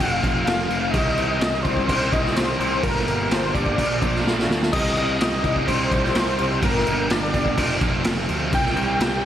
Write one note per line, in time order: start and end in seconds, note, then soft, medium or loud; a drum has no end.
0.00 0.20 F1 medium
0.00 0.43 F2 medium
0.00 0.44 C3 loud
0.00 0.24 F3 medium
0.00 0.23 A3 loud
0.00 0.22 C4 loud
0.00 0.20 F4 loud
0.00 0.42 F5 loud
0.00 kick loud
0.00 crash medium
0.21 0.44 F1 loud
0.21 0.45 F3 medium
0.21 0.46 A3 medium
0.21 0.46 C4 medium
0.21 0.47 F4 medium
0.21 kick medium
0.21 crash medium
0.45 0.67 F1 medium
0.45 0.92 F2 medium
0.45 0.92 C3 medium
0.45 0.72 F3 medium
0.45 0.71 A3 loud
0.45 0.70 C4 loud
0.45 0.68 F4 loud
0.45 0.68 F5 loud
0.45 snare loud
0.45 crash medium
0.68 0.91 F1 medium
0.68 0.94 A3 medium
0.68 0.93 C4 medium
0.68 0.92 F4 medium
0.68 0.92 F5 loud
0.68 crash medium
0.73 0.93 F3 medium
0.91 1.15 C2 medium
0.91 1.65 C3 medium
0.91 1.39 D#3 medium
0.91 1.40 G3 loud
0.91 1.39 D#5 loud
0.91 kick loud
0.91 crash medium
0.95 1.41 C4 medium
0.95 1.42 G4 loud
1.16 1.38 C2 medium
1.16 crash medium
1.39 1.62 C2 loud
1.39 1.85 D#3 medium
1.39 1.87 G3 medium
1.39 1.88 C4 medium
1.39 1.64 D#5 loud
1.39 snare loud
1.39 crash medium
1.44 1.89 G4 medium
1.63 1.86 C2 medium
1.63 1.87 C5 loud
1.63 kick medium
1.63 crash medium
1.77 kick medium
1.87 2.10 C2 loud
1.87 2.34 D#3 medium
1.87 2.13 G3 medium
1.87 2.11 C4 medium
1.87 2.09 G4 medium
1.87 2.14 C5 loud
1.87 kick loud
1.87 crash medium
2.10 2.33 C2 medium
2.10 2.35 G3 medium
2.10 2.36 C4 medium
2.10 2.36 G4 medium
2.10 2.37 D#5 loud
2.10 kick loud
2.10 crash medium
2.25 snare soft
2.34 2.57 C2 medium
2.34 2.81 C3 medium
2.34 2.82 D#3 medium
2.34 2.60 G3 medium
2.34 2.59 C4 loud
2.34 2.57 G4 loud
2.34 2.60 C5 medium
2.34 snare loud
2.34 crash medium
2.58 2.80 C2 medium
2.58 2.82 G3 medium
2.58 2.82 C4 medium
2.58 2.81 G4 medium
2.58 2.82 C5 medium
2.58 crash medium
2.82 3.04 G1 medium
2.82 3.54 G2 medium
2.82 3.54 D3 loud
2.82 3.28 G3 loud
2.82 3.30 A#3 loud
2.82 3.31 D4 loud
2.82 3.32 G4 loud
2.82 3.05 A#4 loud
2.82 kick loud
2.82 crash medium
2.97 snare soft
3.06 3.27 G1 medium
3.06 3.33 A#4 medium
3.06 crash medium
3.29 3.51 G1 loud
3.29 3.76 G3 medium
3.29 3.77 A#3 medium
3.29 3.77 D4 medium
3.29 3.78 G4 medium
3.29 3.56 C5 medium
3.29 snare loud
3.29 crash medium
3.54 3.75 G1 medium
3.54 4.49 D5 medium
3.54 kick medium
3.54 crash medium
3.66 kick medium
3.76 3.99 A#1 loud
3.76 4.23 A#2 loud
3.76 4.24 F3 loud
3.76 4.03 A#3 loud
3.76 4.02 D4 loud
3.76 4.00 F4 loud
3.76 kick loud
3.76 crash loud
4.01 4.23 A#1 loud
4.01 4.25 A#3 medium
4.01 4.26 D4 medium
4.01 4.27 F4 medium
4.01 kick medium
4.01 crash medium
4.15 snare soft
4.24 4.46 A#1 medium
4.24 4.71 A#2 medium
4.24 4.71 F3 medium
4.24 4.51 A#3 medium
4.24 4.49 D4 loud
4.24 4.47 F4 loud
4.24 snare medium
4.39 snare medium
4.48 4.73 D2 medium
4.48 4.73 A#3 medium
4.48 4.72 D4 medium
4.48 4.71 F4 medium
4.48 snare medium
4.62 snare loud
4.72 4.94 C2 medium
4.72 5.44 C3 medium
4.72 5.18 G3 loud
4.72 5.19 C4 loud
4.72 5.21 D#4 loud
4.72 5.22 G4 loud
4.72 5.17 D#5 loud
4.72 kick loud
4.72 crash loud
4.72 crash medium
4.86 snare soft
4.97 5.18 C2 medium
4.97 crash medium
5.19 5.42 C2 loud
5.19 5.66 G3 medium
5.19 5.67 C4 medium
5.19 5.69 D#4 medium
5.19 5.70 G4 medium
5.19 5.69 D#5 loud
5.19 snare loud
5.19 crash medium
5.44 5.65 C2 medium
5.44 kick medium
5.44 crash medium
5.56 kick medium
5.67 5.89 C2 loud
5.67 6.14 G3 medium
5.67 5.93 C4 medium
5.67 5.92 D#4 medium
5.67 5.90 G4 medium
5.67 6.14 C5 loud
5.67 kick loud
5.67 crash medium
5.91 6.13 C2 medium
5.91 6.15 C4 medium
5.91 6.16 D#4 medium
5.91 6.16 G4 medium
5.91 kick loud
5.91 crash medium
6.04 snare soft
6.14 6.36 C2 medium
6.14 6.61 C3 medium
6.14 6.61 G3 loud
6.14 6.40 C4 medium
6.14 6.39 D#4 loud
6.14 6.37 G4 loud
6.14 6.59 C5 loud
6.14 snare loud
6.14 crash medium
6.38 6.60 C2 medium
6.38 6.63 C4 medium
6.38 6.62 D#4 medium
6.38 6.61 G4 medium
6.38 crash medium
6.62 6.83 G1 loud
6.62 7.33 G2 medium
6.62 7.34 D3 loud
6.62 7.08 G3 loud
6.62 7.09 A#3 loud
6.62 7.10 D4 loud
6.62 7.11 G4 loud
6.62 7.08 A#4 loud
6.62 kick loud
6.62 crash medium
6.75 snare soft
6.86 7.08 G1 medium
6.86 crash medium
7.09 7.31 G1 loud
7.09 7.56 G3 medium
7.09 7.56 A#3 medium
7.09 7.57 D4 medium
7.09 7.57 G4 medium
7.09 8.02 D5 medium
7.09 snare loud
7.09 crash medium
7.34 7.55 G1 medium
7.34 kick medium
7.34 crash medium
7.46 kick medium
7.57 7.79 F1 loud
7.57 8.03 F2 loud
7.57 8.04 C3 loud
7.57 7.83 F3 loud
7.57 7.81 A3 medium
7.57 7.80 C4 loud
7.57 7.79 F4 loud
7.57 kick loud
7.57 crash loud
7.81 8.02 F1 medium
7.81 8.04 F3 medium
7.81 8.05 A3 medium
7.81 8.06 C4 medium
7.81 8.06 F4 medium
7.81 kick loud
7.81 crash medium
8.04 8.27 F1 loud
8.04 8.51 F2 loud
8.04 8.51 C3 medium
8.04 8.31 F3 medium
8.04 8.30 A3 loud
8.04 8.29 C4 loud
8.04 8.27 F4 loud
8.04 snare loud
8.04 crash medium
8.28 8.53 D2 loud
8.28 8.52 F3 medium
8.28 8.52 A3 medium
8.28 8.52 C4 medium
8.28 8.51 F4 medium
8.28 crash medium
8.52 8.74 C2 loud
8.52 9.24 C3 loud
8.52 8.98 D#3 loud
8.52 9.00 G3 loud
8.52 9.01 C4 loud
8.52 9.02 G4 loud
8.52 8.98 G5 loud
8.52 kick loud
8.52 crash medium
8.66 snare soft
8.76 8.97 C2 loud
8.76 crash medium
8.99 9.21 C2 loud
8.99 9.25 D#3 medium
8.99 9.25 G3 medium
8.99 9.25 C4 medium
8.99 9.25 G4 medium
8.99 9.25 G5 loud
8.99 snare loud
8.99 crash medium